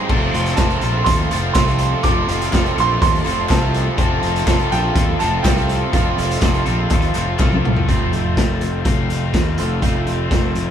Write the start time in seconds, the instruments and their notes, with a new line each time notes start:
Already playing: distorted electric guitar C4, string machine C6
0.09 picked electric bass F1, distorted electric guitar F2 C3 F3 A3 C4 F4, string machine A4 F5, overdriven electric guitar A4, glockenspiel C6, kick, crash
0.33 picked electric bass F1, distorted electric guitar A3 C4 F4, closed hi-hat
0.37 distorted electric guitar F3
0.46 closed hi-hat
0.55 picked electric bass F1, distorted electric guitar F2 C3 F3, upright piano A5, kick, snare, clap, closed hi-hat
0.59 distorted electric guitar A3 C4 F4, overdriven electric guitar A4
0.70 closed hi-hat
0.81 picked electric bass A#1, distorted electric guitar F3 A3 C4 F4, overdriven electric guitar A4, closed hi-hat
1.05 picked electric bass D#2, overdriven electric guitar F3 C4, upright piano C6, kick, closed hi-hat
1.10 overdriven electric guitar F4 A4
1.31 picked electric bass F1, distorted electric guitar F3 A3 C4 F4, overdriven electric guitar A4, clap, closed hi-hat
1.54 picked electric bass C2, distorted electric guitar F3 A3 C4 F4, upright piano C6, kick, snare, clap, closed hi-hat
1.59 overdriven electric guitar A4
1.68 closed hi-hat
1.79 closed hi-hat
2.03 picked electric bass F1, distorted electric guitar F2 C3 F3 A3 C4 F4, upright piano D6, kick, closed hi-hat
2.08 overdriven electric guitar A4
2.28 picked electric bass F1, distorted electric guitar F3 A3 C4 F4, closed hi-hat
2.41 closed hi-hat
2.53 picked electric bass F1, distorted electric guitar F2 C3 F3 A3 C4 F4, overdriven electric guitar A4, kick, snare, clap, closed hi-hat
2.66 closed hi-hat
2.76 picked electric bass A#1, distorted electric guitar C4 F4, overdriven electric guitar A4, closed hi-hat
2.80 distorted electric guitar F3 A3, upright piano C6
2.99 picked electric bass D#2, overdriven electric guitar F3 C4 F4, upright piano C6, kick, closed hi-hat
3.03 overdriven electric guitar A4
3.15 closed hi-hat
3.24 picked electric bass F1, distorted electric guitar F3 A3 C4 F4, overdriven electric guitar A4, clap, closed hi-hat
3.49 picked electric bass C2, distorted electric guitar F3 A3 C4 F4, overdriven electric guitar A4, upright piano A5, kick, snare, clap, closed hi-hat
3.74 closed hi-hat
3.94 picked electric bass F1, distorted electric guitar F2 C3 F3 A3 C4 F4, glockenspiel G#5, kick, closed hi-hat
4.01 overdriven electric guitar A4, glockenspiel A5
4.20 picked electric bass F1, distorted electric guitar F3 A3 C4 F4, closed hi-hat
4.36 closed hi-hat
4.44 picked electric bass F1, distorted electric guitar F2 C3 F3 A3 C4 F4, kick, snare, clap, closed hi-hat
4.49 overdriven electric guitar A4
4.59 closed hi-hat
4.68 picked electric bass A#1, distorted electric guitar F3 A3 C4 F4, overdriven electric guitar A4, upright piano G5, closed hi-hat
4.73 overdriven electric guitar C4 F4, snare
4.95 picked electric bass D#2, overdriven electric guitar F3 C4 F4 A4, kick, closed hi-hat
5.19 picked electric bass F1, distorted electric guitar F3 A3 C4 F4, overdriven electric guitar A4, upright piano A5, clap, closed hi-hat
5.24 overdriven electric guitar C4
5.43 picked electric bass C2, distorted electric guitar F3 A3, upright piano G5, kick, snare, clap, closed hi-hat
5.47 distorted electric guitar C4 F4, overdriven electric guitar A4
5.58 closed hi-hat
5.69 closed hi-hat
5.93 picked electric bass F1, distorted electric guitar F2 C3 F3 A3 C4 F4, overdriven electric guitar A4, upright piano F5, kick, closed hi-hat
6.17 picked electric bass F1, distorted electric guitar F3 A3 C4 F4, closed hi-hat
6.31 closed hi-hat
6.40 picked electric bass F1, distorted electric guitar F2 C3 F3 A3 C4 F4, kick, snare, clap, closed hi-hat
6.45 overdriven electric guitar A4
6.54 closed hi-hat
6.65 picked electric bass A#1, distorted electric guitar F3 A3 C4 F4, overdriven electric guitar A4, closed hi-hat
6.90 picked electric bass D#2, overdriven electric guitar F3 C4 F4 A4, kick, closed hi-hat
7.02 closed hi-hat
7.13 picked electric bass F1, distorted electric guitar F3 A3 C4 F4, overdriven electric guitar A4, clap, closed hi-hat
7.39 picked electric bass C2, distorted electric guitar F3 A3 C4 F4, overdriven electric guitar A4, kick, snare, clap
7.53 high tom
7.65 mid tom
7.76 floor tom
7.87 picked electric bass F1, distorted electric guitar F3 A3 C4 F4 A4, string machine A4 F5 C6, kick, closed hi-hat
8.13 picked electric bass F1, closed hi-hat
8.37 picked electric bass F1, kick, snare, closed hi-hat
8.61 picked electric bass F1, closed hi-hat
8.84 picked electric bass F1, overdriven electric guitar A3 C4 F4, kick, closed hi-hat
9.10 picked electric bass F1, closed hi-hat
9.34 picked electric bass D#2, kick, snare, closed hi-hat
9.58 picked electric bass F1, distorted electric guitar F3 A3 C4 F4 A4, closed hi-hat
9.80 picked electric bass F1, distorted electric guitar F3 A3 C4 F4 A4, kick, closed hi-hat
10.07 picked electric bass F1, closed hi-hat
10.31 picked electric bass F1, kick, snare, closed hi-hat
10.55 picked electric bass F1, closed hi-hat